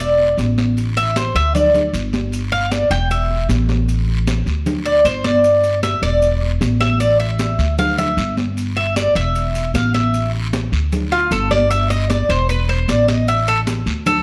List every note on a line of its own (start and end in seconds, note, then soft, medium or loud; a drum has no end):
0.00 0.34 E1 medium
0.00 0.36 D5 medium
0.00 high conga soft
0.00 maracas medium
0.19 high conga soft
0.37 1.29 A1 medium
0.37 high conga medium
0.37 short guiro medium
0.37 maracas medium
0.58 high conga medium
0.58 short guiro medium
0.58 maracas soft
0.77 high conga soft
0.77 long guiro medium
0.77 maracas medium
0.97 1.16 E5 loud
0.97 high conga soft
0.97 maracas medium
1.16 1.35 C5 medium
1.16 high conga medium
1.16 short guiro medium
1.16 maracas medium
1.35 1.90 D2 medium
1.35 1.54 E5 loud
1.35 high conga soft
1.35 short guiro medium
1.35 maracas soft
1.55 1.91 D5 medium
1.55 high conga soft
1.55 low conga medium
1.55 long guiro medium
1.55 maracas medium
1.74 high conga soft
1.74 low conga medium
1.74 maracas medium
1.93 2.85 G1 medium
1.93 high conga soft
1.93 short guiro medium
1.93 maracas medium
2.13 high conga medium
2.13 short guiro medium
2.13 maracas soft
2.32 high conga soft
2.32 long guiro medium
2.32 maracas medium
2.52 2.71 F5 loud
2.52 high conga soft
2.71 2.90 D5 medium
2.71 high conga medium
2.71 short guiro medium
2.71 maracas medium
2.90 3.45 E1 medium
2.90 3.10 G5 loud
2.90 high conga soft
2.90 short guiro medium
2.90 maracas soft
3.11 3.47 E5 medium
3.11 high conga soft
3.11 long guiro medium
3.11 maracas medium
3.30 high conga soft
3.49 4.41 A1 medium
3.49 high conga medium
3.49 short guiro medium
3.49 maracas medium
3.69 high conga medium
3.69 short guiro medium
3.69 maracas soft
3.88 high conga soft
3.88 long guiro medium
3.88 maracas medium
4.08 high conga soft
4.27 high conga medium
4.27 short guiro medium
4.27 maracas medium
4.46 5.01 D2 medium
4.46 high conga soft
4.46 short guiro medium
4.46 maracas soft
4.66 high conga soft
4.66 low conga medium
4.66 long guiro medium
4.66 maracas medium
4.85 5.05 D5 loud
4.85 high conga soft
5.05 5.97 G1 medium
5.05 5.24 C5 medium
5.05 high conga soft
5.05 short guiro medium
5.05 maracas medium
5.24 5.79 D5 loud
5.24 high conga medium
5.24 short guiro medium
5.24 maracas soft
5.44 high conga soft
5.44 long guiro medium
5.44 maracas medium
5.64 high conga soft
5.64 maracas medium
5.83 6.02 E5 medium
5.83 high conga medium
5.83 short guiro medium
5.83 maracas medium
6.02 6.57 E1 medium
6.02 6.39 D5 loud
6.02 high conga soft
6.02 short guiro medium
6.02 maracas soft
6.22 high conga soft
6.22 long guiro medium
6.22 maracas medium
6.42 high conga soft
6.61 7.53 A1 loud
6.61 high conga medium
6.61 short guiro medium
6.61 maracas medium
6.80 7.00 E5 loud
6.80 high conga medium
6.80 short guiro medium
6.80 maracas soft
7.00 7.19 D5 medium
7.00 high conga soft
7.00 long guiro medium
7.00 maracas medium
7.20 7.75 E5 medium
7.20 high conga soft
7.39 high conga medium
7.39 short guiro medium
7.39 maracas medium
7.59 8.14 D2 loud
7.59 high conga soft
7.59 short guiro medium
7.59 maracas soft
7.78 7.98 F5 loud
7.78 high conga soft
7.78 low conga medium
7.78 long guiro medium
7.78 maracas medium
7.98 8.35 E5 medium
7.98 high conga soft
7.98 low conga medium
7.98 maracas medium
8.17 9.10 G1 loud
8.17 high conga soft
8.17 short guiro medium
8.17 maracas medium
8.37 high conga medium
8.37 short guiro medium
8.37 maracas soft
8.57 high conga soft
8.57 long guiro medium
8.57 maracas medium
8.77 8.96 E5 medium
8.77 high conga soft
8.96 9.15 D5 medium
8.96 high conga medium
8.96 short guiro medium
8.96 maracas medium
9.15 9.70 E1 medium
9.15 9.71 E5 loud
9.15 high conga soft
9.15 short guiro medium
9.15 maracas soft
9.35 high conga soft
9.35 long guiro medium
9.35 maracas medium
9.55 high conga soft
9.55 maracas medium
9.74 10.66 A1 medium
9.74 9.94 F5 medium
9.74 high conga medium
9.74 short guiro medium
9.74 maracas medium
9.94 10.31 E5 medium
9.94 high conga medium
9.94 short guiro medium
9.94 maracas soft
10.14 high conga soft
10.14 long guiro medium
10.14 maracas medium
10.34 high conga soft
10.53 high conga medium
10.53 short guiro medium
10.53 maracas medium
10.72 11.27 D2 medium
10.72 high conga soft
10.72 short guiro medium
10.72 maracas soft
10.92 high conga soft
10.92 low conga medium
10.92 long guiro medium
10.92 maracas medium
11.12 11.31 F4 medium
11.12 high conga soft
11.31 12.23 G1 loud
11.31 11.51 A4 medium
11.31 high conga soft
11.31 short guiro medium
11.31 maracas medium
11.51 11.70 D5 loud
11.51 high conga medium
11.51 short guiro medium
11.51 maracas soft
11.70 11.90 E5 loud
11.70 high conga soft
11.70 long guiro medium
11.70 maracas medium
11.90 12.09 D#5 medium
11.90 high conga soft
11.90 maracas medium
12.10 12.29 D5 medium
12.10 high conga medium
12.10 short guiro medium
12.10 maracas medium
12.29 12.84 E1 medium
12.29 12.49 C5 medium
12.29 high conga soft
12.29 short guiro medium
12.29 maracas soft
12.49 12.68 B4 medium
12.49 high conga soft
12.49 long guiro medium
12.49 maracas medium
12.69 12.88 C5 medium
12.69 high conga soft
12.88 13.81 A1 loud
12.88 13.08 D5 medium
12.88 high conga medium
12.88 short guiro medium
12.88 maracas medium
13.08 13.27 D#5 medium
13.08 high conga medium
13.08 short guiro medium
13.08 maracas soft
13.28 13.47 E5 loud
13.28 high conga soft
13.28 long guiro medium
13.28 maracas medium
13.47 13.60 A4 loud
13.47 high conga soft
13.47 maracas medium
13.67 high conga medium
13.67 short guiro medium
13.67 maracas medium
13.86 14.23 D2 medium
13.86 high conga soft
13.86 short guiro medium
13.86 maracas soft
14.06 14.23 A4 medium
14.06 high conga soft
14.06 low conga medium
14.06 long guiro medium
14.06 maracas medium